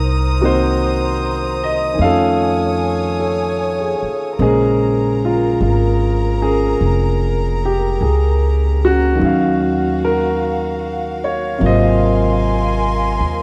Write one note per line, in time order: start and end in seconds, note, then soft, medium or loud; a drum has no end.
0.00 1.95 C2 medium
0.00 1.60 D#4 medium
0.00 0.39 A#4 medium
0.00 1.95 C5 medium
0.00 1.95 A#5 medium
0.00 4.36 D#6 medium
0.41 1.92 D#3 soft
0.41 1.99 A#3 soft
0.41 1.99 C4 soft
0.41 1.99 F#4 medium
0.45 1.59 C5 medium
1.63 2.01 D#5 medium
1.93 4.36 D#3 soft
1.97 3.97 F2 medium
1.97 4.38 A3 soft
1.97 4.40 C#4 soft
1.97 4.36 C#5 medium
1.97 4.36 G#5 medium
2.01 4.42 F4 soft
2.01 3.18 A4 medium
2.01 3.98 F5 medium
3.19 4.16 A4 soft
3.80 4.41 G#4 soft
4.03 muted upright bass stroke soft
4.39 5.55 A#1 medium
4.39 9.20 C#3 soft
4.39 9.21 G#3 medium
4.39 9.20 A#3 soft
4.39 5.25 G#4 medium
4.39 9.16 A#4 medium
4.39 9.20 C5 soft
4.39 9.16 A#5 medium
4.44 6.40 C#4 medium
5.25 5.60 F4 medium
5.61 6.76 G#1 medium
5.61 6.45 F4 medium
6.41 8.84 C#4 soft
6.41 7.65 G#4 medium
6.41 9.21 A#4 soft
6.81 7.96 F1 medium
7.65 7.99 G4 medium
8.01 9.16 C#2 medium
8.01 8.79 G#4 medium
8.85 9.21 C#4 medium
8.85 9.99 F#4 medium
9.15 11.58 D#3 medium
9.15 11.59 F#3 soft
9.15 13.43 F5 medium
9.19 11.57 D#2 medium
9.19 11.62 C#4 soft
9.19 11.58 F#4 medium
9.25 11.63 F5 medium
10.04 11.27 A#4 medium
11.24 11.59 C#5 medium
11.58 13.17 G#1 medium
11.58 13.43 C3 soft
11.58 13.43 F#3 soft
11.58 13.43 A#3 soft
11.58 13.43 A#4 medium
11.58 13.43 G#5 medium
11.58 13.43 C6 medium
11.63 13.43 F4 medium
11.63 13.43 C5 medium
11.63 13.43 D#5 medium
13.20 13.43 D#2 soft